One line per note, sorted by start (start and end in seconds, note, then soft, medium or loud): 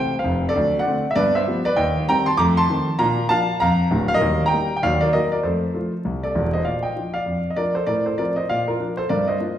0.00 0.10 C3 soft
0.00 0.10 A3 medium
0.00 0.11 C4 medium
0.00 0.17 C5 medium
0.00 0.14 G5 loud
0.19 0.48 C5 medium
0.19 0.45 F5 medium
0.24 0.49 F1 medium
0.24 0.49 F2 medium
0.49 0.78 A4 medium
0.49 0.75 D5 loud
0.56 0.81 D2 medium
0.56 0.74 F#3 medium
0.79 1.09 D5 medium
0.79 1.05 F#5 loud
0.86 1.03 D3 medium
0.86 1.03 A3 medium
0.86 1.04 C4 medium
1.11 1.17 E5 medium
1.15 1.42 G2 loud
1.15 1.34 B3 medium
1.15 1.34 B4 medium
1.15 1.32 D5 loud
1.35 1.64 C5 medium
1.35 1.61 E5 loud
1.47 1.64 F3 medium
1.47 1.64 G3 medium
1.47 1.65 B3 medium
1.65 1.77 B4 medium
1.65 1.75 D5 loud
1.76 2.03 D#2 medium
1.76 2.06 D#5 medium
1.76 2.03 G5 loud
2.09 2.25 D#3 medium
2.09 2.26 G3 medium
2.09 2.26 C4 medium
2.09 2.26 G5 loud
2.09 2.24 A#5 loud
2.26 2.38 A5 medium
2.26 2.36 C6 loud
2.37 2.64 F2 loud
2.37 2.56 A3 medium
2.37 2.56 A#5 loud
2.37 2.53 D6 loud
2.57 2.97 A5 loud
2.57 2.93 C6 loud
2.70 2.87 D#3 medium
2.70 2.87 A3 medium
2.70 2.87 C4 medium
2.99 3.25 A#2 loud
2.99 3.18 D4 medium
2.99 3.28 F5 medium
2.99 3.25 A#5 loud
3.29 3.47 F3 medium
3.29 3.47 A#3 medium
3.29 3.47 D4 medium
3.29 3.59 F5 loud
3.29 3.55 A5 loud
3.60 3.87 F2 loud
3.60 4.07 F5 loud
3.60 4.02 A#5 loud
3.91 4.15 D1 loud
3.91 4.15 D2 medium
4.08 4.15 F5 loud
4.14 4.44 A#4 medium
4.14 4.41 D#5 loud
4.21 4.47 D#2 medium
4.21 4.40 G3 medium
4.46 4.75 G5 medium
4.46 4.72 A#5 loud
4.53 4.70 G3 medium
4.53 4.70 A#3 medium
4.53 4.70 D#4 medium
4.77 4.83 G5 medium
4.83 5.09 D#2 loud
4.83 5.01 F#3 medium
4.83 4.99 D5 medium
4.83 4.98 F5 loud
5.01 5.13 A#4 medium
5.01 5.11 D5 loud
5.13 5.30 F#3 soft
5.13 5.31 A#3 medium
5.13 5.31 D#4 medium
5.13 5.31 A#4 medium
5.13 5.29 D#5 loud
5.32 5.43 A#4 medium
5.32 5.42 D5 medium
5.43 5.70 F2 medium
5.43 5.62 A3 medium
5.43 6.23 A4 medium
5.43 6.21 C5 medium
5.74 5.91 F3 medium
5.74 5.91 A3 medium
5.74 5.92 F4 medium
6.05 6.31 C2 medium
6.23 6.52 A4 medium
6.23 6.49 D5 medium
6.35 6.59 E1 medium
6.35 6.60 E2 medium
6.53 6.65 C5 medium
6.53 6.64 D#5 medium
6.65 6.91 A#2 medium
6.65 6.83 D5 medium
6.65 6.81 F5 medium
6.83 7.12 D#5 medium
6.83 7.09 G5 medium
6.96 7.13 F3 soft
6.96 7.13 D4 soft
6.96 7.14 F4 soft
7.14 7.49 D5 medium
7.14 7.45 F5 medium
7.26 7.52 F2 medium
7.50 7.57 D#5 medium
7.56 7.74 F3 soft
7.56 7.74 D4 soft
7.56 7.74 F4 soft
7.56 7.75 A#4 medium
7.56 7.73 D5 loud
7.75 7.87 A4 medium
7.75 7.86 C5 medium
7.87 8.13 A2 medium
7.87 8.05 A#4 medium
7.87 8.03 D5 loud
8.06 8.18 A4 medium
8.06 8.16 C5 medium
8.18 8.35 F3 soft
8.18 8.36 C4 soft
8.18 8.36 F4 soft
8.18 8.36 A#4 medium
8.18 8.34 D5 medium
8.36 8.49 C5 medium
8.36 8.47 D#5 medium
8.49 8.76 A#2 medium
8.49 8.67 D5 medium
8.49 8.65 F5 loud
8.68 8.79 F4 medium
8.68 8.94 A#4 medium
8.79 8.96 F3 soft
8.79 8.97 D4 medium
8.79 8.97 F4 soft
8.97 9.10 A4 medium
8.97 9.08 C5 medium
9.09 9.36 G2 medium
9.09 9.28 A#4 medium
9.09 9.26 D5 loud
9.28 9.57 C5 medium
9.28 9.54 D#5 medium
9.40 9.57 A#3 soft
9.40 9.58 D4 medium
9.40 9.58 F4 medium